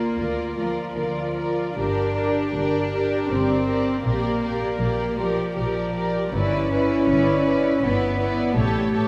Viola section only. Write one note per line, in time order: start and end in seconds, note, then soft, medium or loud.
0.00 0.16 F4 soft
0.18 0.56 F4 soft
0.57 0.94 F4 soft
0.95 1.36 F4 soft
1.37 1.77 F4 soft
1.78 2.16 G4 soft
2.18 2.54 G4 soft
2.55 2.92 G4 soft
2.93 3.30 G4 soft
3.31 3.67 G4 soft
3.68 4.05 G4 soft
4.06 4.42 G4 soft
4.44 4.81 G4 soft
4.82 5.18 G4 soft
5.19 5.56 G4 soft
5.57 5.95 G4 soft
5.96 6.35 G4 soft
6.35 6.72 E4 medium
6.73 7.09 E4 soft
7.11 7.47 E4 soft
7.48 7.83 E4 soft
7.84 8.19 E4 soft
8.20 8.55 E4 soft
8.56 8.92 G4 medium
8.94 9.08 G4 soft